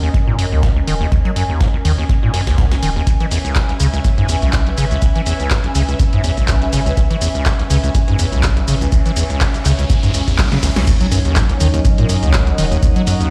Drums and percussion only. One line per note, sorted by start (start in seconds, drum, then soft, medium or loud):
0.14 kick loud
0.14 closed hi-hat medium
0.39 closed hi-hat medium
0.39 open hi-hat loud
0.63 kick loud
0.63 snare loud
0.63 closed hi-hat medium
0.87 closed hi-hat medium
0.87 open hi-hat loud
1.12 kick loud
1.12 closed hi-hat medium
1.25 closed hi-hat soft
1.36 closed hi-hat medium
1.36 open hi-hat loud
1.61 kick loud
1.61 snare loud
1.61 closed hi-hat medium
1.85 closed hi-hat medium
1.85 open hi-hat loud
2.09 kick loud
2.09 closed hi-hat medium
2.34 snare loud
2.34 closed hi-hat medium
2.34 open hi-hat loud
2.47 kick medium
2.47 snare loud
2.47 closed hi-hat medium
2.58 kick loud
2.58 snare loud
2.58 closed hi-hat medium
2.72 snare loud
2.72 closed hi-hat medium
2.83 closed hi-hat medium
2.83 open hi-hat loud
3.07 kick loud
3.07 closed hi-hat medium
3.07 shaker soft
3.20 closed hi-hat soft
3.31 open hi-hat medium
3.31 open hi-hat loud
3.31 shaker medium
3.45 closed hi-hat soft
3.45 shaker soft
3.56 kick loud
3.56 snare loud
3.56 clap loud
3.56 closed hi-hat medium
3.56 shaker soft
3.69 snare soft
3.69 closed hi-hat soft
3.80 closed hi-hat medium
3.80 open hi-hat loud
3.80 shaker medium
3.93 closed hi-hat soft
3.93 shaker soft
4.04 kick loud
4.04 closed hi-hat medium
4.04 shaker soft
4.18 closed hi-hat soft
4.29 closed hi-hat medium
4.29 open hi-hat loud
4.29 shaker medium
4.42 closed hi-hat soft
4.42 shaker soft
4.53 kick loud
4.53 snare loud
4.53 clap loud
4.53 closed hi-hat medium
4.53 shaker soft
4.67 closed hi-hat soft
4.78 closed hi-hat medium
4.78 open hi-hat loud
4.78 shaker medium
4.91 closed hi-hat soft
4.91 shaker soft
5.02 kick loud
5.02 closed hi-hat medium
5.02 shaker soft
5.15 closed hi-hat soft
5.26 closed hi-hat medium
5.26 open hi-hat loud
5.26 shaker medium
5.40 closed hi-hat soft
5.40 shaker soft
5.51 kick loud
5.51 snare loud
5.51 clap loud
5.51 closed hi-hat medium
5.51 shaker soft
5.64 closed hi-hat soft
5.75 closed hi-hat medium
5.75 open hi-hat loud
5.75 shaker medium
5.88 closed hi-hat soft
5.88 shaker soft
5.99 kick loud
5.99 closed hi-hat medium
5.99 shaker soft
6.13 closed hi-hat soft
6.24 closed hi-hat medium
6.24 open hi-hat loud
6.24 shaker medium
6.37 kick medium
6.37 closed hi-hat soft
6.37 shaker soft
6.48 kick loud
6.48 snare loud
6.48 clap loud
6.48 closed hi-hat medium
6.48 shaker soft
6.62 closed hi-hat soft
6.73 closed hi-hat medium
6.73 open hi-hat loud
6.73 shaker medium
6.86 closed hi-hat soft
6.86 shaker soft
6.97 kick loud
6.97 closed hi-hat medium
6.97 shaker soft
7.11 closed hi-hat soft
7.22 open hi-hat medium
7.22 open hi-hat loud
7.22 shaker medium
7.35 closed hi-hat soft
7.35 shaker soft
7.46 kick loud
7.46 snare loud
7.46 clap loud
7.46 closed hi-hat medium
7.46 shaker soft
7.59 snare soft
7.59 closed hi-hat soft
7.70 closed hi-hat medium
7.70 open hi-hat loud
7.70 shaker medium
7.84 closed hi-hat soft
7.84 shaker soft
7.95 kick loud
7.95 closed hi-hat medium
7.95 shaker soft
8.08 closed hi-hat soft
8.19 closed hi-hat medium
8.19 open hi-hat loud
8.19 shaker medium
8.32 closed hi-hat soft
8.32 shaker soft
8.43 kick loud
8.43 snare loud
8.43 clap loud
8.43 closed hi-hat medium
8.43 shaker soft
8.57 closed hi-hat soft
8.68 closed hi-hat medium
8.68 open hi-hat medium
8.68 shaker medium
8.81 closed hi-hat soft
8.81 shaker soft
8.92 kick loud
8.92 closed hi-hat medium
8.92 shaker soft
9.06 closed hi-hat soft
9.06 shaker soft
9.17 closed hi-hat medium
9.17 open hi-hat loud
9.17 shaker medium
9.30 closed hi-hat soft
9.30 shaker soft
9.41 kick loud
9.41 snare loud
9.41 clap loud
9.41 closed hi-hat medium
9.41 shaker soft
9.54 closed hi-hat soft
9.54 shaker soft
9.65 clap soft
9.65 closed hi-hat medium
9.65 open hi-hat loud
9.65 shaker medium
9.79 closed hi-hat soft
9.79 shaker soft
9.90 kick loud
9.90 closed hi-hat medium
9.90 shaker soft
10.03 closed hi-hat soft
10.03 shaker soft
10.14 closed hi-hat medium
10.14 open hi-hat loud
10.14 shaker medium
10.28 kick medium
10.28 closed hi-hat soft
10.28 shaker soft
10.38 kick loud
10.38 snare loud
10.38 snare medium
10.38 clap loud
10.38 closed hi-hat medium
10.38 shaker soft
10.52 snare medium
10.52 closed hi-hat soft
10.63 snare loud
10.63 closed hi-hat medium
10.63 open hi-hat loud
10.63 shaker medium
10.76 snare medium
10.76 snare loud
10.76 closed hi-hat soft
10.76 closed hi-hat medium
10.76 shaker soft
10.87 kick loud
10.87 closed hi-hat medium
10.87 crash loud
10.87 shaker soft
11.01 closed hi-hat soft
11.12 open hi-hat loud
11.12 open hi-hat medium
11.12 shaker medium
11.25 closed hi-hat soft
11.25 shaker soft
11.36 kick loud
11.36 snare loud
11.36 clap loud
11.36 closed hi-hat medium
11.36 shaker soft
11.49 snare soft
11.49 closed hi-hat soft
11.60 closed hi-hat medium
11.60 open hi-hat loud
11.60 shaker medium
11.74 closed hi-hat soft
11.74 shaker soft
11.85 kick loud
11.85 closed hi-hat medium
11.85 shaker soft
11.98 closed hi-hat soft
12.09 closed hi-hat medium
12.09 open hi-hat loud
12.09 shaker medium
12.23 closed hi-hat soft
12.23 shaker soft
12.33 kick loud
12.33 snare loud
12.33 clap loud
12.33 closed hi-hat medium
12.33 shaker soft
12.47 closed hi-hat soft
12.58 closed hi-hat medium
12.58 open hi-hat loud
12.58 shaker medium
12.72 closed hi-hat soft
12.72 shaker soft
12.83 kick loud
12.83 closed hi-hat medium
12.83 shaker soft
12.96 closed hi-hat soft
13.07 closed hi-hat medium
13.07 open hi-hat loud
13.07 shaker medium
13.21 closed hi-hat soft
13.21 shaker soft